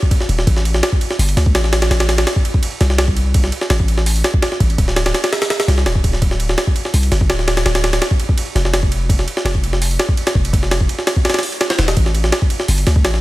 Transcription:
0.02 kick
0.11 kick, ride
0.20 snare
0.29 808-style bass D#1, ride
0.39 snare
0.47 808-style bass A1, kick, ride
0.56 snare
0.65 ride
0.74 snare
0.83 snare, ride
0.92 kick
1.01 ride
1.10 snare
1.19 808-style bass G1, open hi-hat
1.29 ride
1.37 808-style bass D2, snare, ride
1.46 kick
1.55 808-style bass A1, snare, ride
1.64 snare
1.73 snare, ride
1.82 snare, ride
1.90 808-style bass A1, snare, ride
2.00 snare, ride
2.09 snare, ride
2.18 snare, ride
2.27 snare, ride
2.36 kick
2.45 ride
2.54 kick
2.63 ride
2.81 808-style bass C2, snare, ride
2.90 snare
2.98 snare, ride
3.08 kick
3.17 ride
3.34 kick, ride
3.44 snare
3.52 ride
3.61 snare
3.70 808-style bass A1, snare, ride
3.80 kick
3.88 ride
3.98 snare
4.06 open hi-hat
4.16 ride
4.24 snare, ride
4.34 kick
4.42 snare, ride
4.52 snare
4.60 808-style bass A1, kick, ride
4.70 ride
4.78 808-style bass D1, kick, ride
4.88 snare
4.96 snare, ride
5.06 snare, ride
5.14 snare, ride
5.24 snare, ride
5.33 snare, ride
5.42 snare, ride
5.50 snare, ride
5.60 snare, ride
5.68 808-style bass C2, snare, ride
5.78 snare
5.86 808-style bass D1, snare, ride
5.95 kick
6.04 kick, ride
6.13 snare
6.22 808-style bass D1, kick, ride
6.31 snare
6.40 ride
6.49 snare
6.58 snare, ride
6.67 kick
6.76 ride
6.85 snare
6.94 808-style bass C2, open hi-hat
7.03 ride
7.12 808-style bass G1, snare, ride
7.21 kick
7.30 808-style bass D1, snare, ride
7.39 snare
7.48 snare, ride
7.57 snare, ride
7.66 808-style bass D1, snare, ride
7.75 snare, ride
7.84 snare, ride
7.93 snare, ride
8.02 snare, ride
8.11 kick
8.20 ride
8.29 kick
8.38 ride
8.55 808-style bass F1, snare, ride
8.65 snare
8.74 snare, ride
8.83 kick
8.92 ride
9.09 kick, ride
9.19 snare
9.28 ride
9.37 snare
9.45 808-style bass F1, snare, ride
9.55 kick
9.64 ride
9.73 snare
9.82 open hi-hat
9.91 ride
9.99 snare, ride
10.09 kick
10.17 ride
10.27 snare, ride
10.35 808-style bass F1, kick
10.45 ride
10.53 808-style bass F1, kick, ride
10.63 snare
10.71 snare, ride
10.80 kick
10.89 ride
10.99 snare
11.07 snare, ride
11.16 kick
11.25 snare, ride
11.30 snare, ride
11.34 snare, ride
11.39 snare, ride
11.43 open hi-hat
11.52 ride
11.61 snare, ride
11.70 snare, ride
11.79 808-style bass D#1, snare, ride
11.88 snare, ride
11.97 808-style bass A1, kick, ride
12.06 snare
12.15 ride
12.24 snare
12.32 snare, ride
12.42 kick
12.50 ride
12.60 snare
12.68 808-style bass G1, open hi-hat
12.78 ride
12.87 808-style bass D2, snare, ride
12.96 kick
13.04 808-style bass A1, snare, ride
13.14 snare

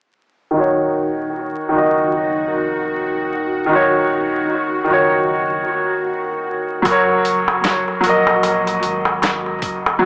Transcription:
0.51 sub bass D#1, upright piano D#3 D#4, synth drone F#4
0.57 upright piano F#4 C#5
1.69 sub bass F#1, upright piano D#3 D#4
1.75 upright piano F#4 D#5
2.52 sub bass F1
3.31 sub bass D#1
3.66 upright piano D#3 D#4
3.72 upright piano F#4 C#5
4.84 upright piano D#3 D#4
4.89 sub bass F#1, upright piano F#4 C#5
6.82 sub bass F#1, upright piano F#3 F#4, kick, closed hi-hat, darbuka tek
6.88 upright piano A#4 C#5
7.09 darbuka tek
7.25 closed hi-hat
7.48 darbuka tek
7.64 snare, closed hi-hat, darbuka tek
7.88 darbuka tek
8.01 upright piano F#3 F#4, closed hi-hat
8.05 sub bass A#1, upright piano A#4
8.09 upright piano D#5
8.27 darbuka tek
8.43 closed hi-hat, darbuka tek
8.67 closed hi-hat, darbuka tek
8.83 sub bass G#1, closed hi-hat
9.05 darbuka tek
9.22 snare, closed hi-hat, darbuka tek
9.46 darbuka tek
9.62 sub bass F#1, kick, closed hi-hat
9.86 darbuka tek
9.99 upright piano F#3 F#4

